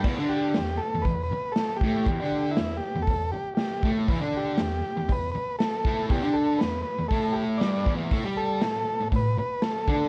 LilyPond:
<<
  \new Staff \with { instrumentName = "Transistor combo organ" } { \time 4/4 \key e \minor \tempo 4 = 119 r8 g'4 a'8 b'8 b'8 a'8 g'8~ | g'8 g'8 e'8 g'8 a'8 g'8 g'8. r16 | r8 g'4. b'8 b'8 a'4 | g'8 a'8 b'8 b'8 a'8 g'8 d''8. r16 |
r8 a'4. b'8 b'8 a'4 | }
  \new Staff \with { instrumentName = "Distorted electric guitar" } { \clef bass \time 4/4 \key e \minor <e, e>16 <d d'>8. e,8 r16 e,16 e,8 r4 <a, a>8 | <e, e>16 <d d'>8. e,8 r16 e,16 e,8 r4 <a, a>8 | <e, e>16 <d d'>8. e,8 r16 e,16 e,8 r4 <a, a>8 | <e, e>16 <d d'>8. e,8 r16 e,16 <a, a>4 <g, g>8 <e, e>8 |
<a, a>16 <g g'>8. a,8 r16 a,16 a,8 r4 <d d'>8 | }
  \new DrumStaff \with { instrumentName = "Drums" } \drummode { \time 4/4 <cymc bd>4 <hho sn>4 <hho bd>4 <hho sn>8 bd8 | <hho bd>4 <hho sn>4 <hho bd>4 <hho sn>8 bd8 | <hho bd>4 <hho sn>4 <hho bd>4 <hho sn>8 bd8 | <hho bd>4 <hho sn>4 <hho bd>4 <hho sn>8 bd8 |
<hho bd>4 <hho sn>4 <hho bd>4 <hho sn>8 bd8 | }
>>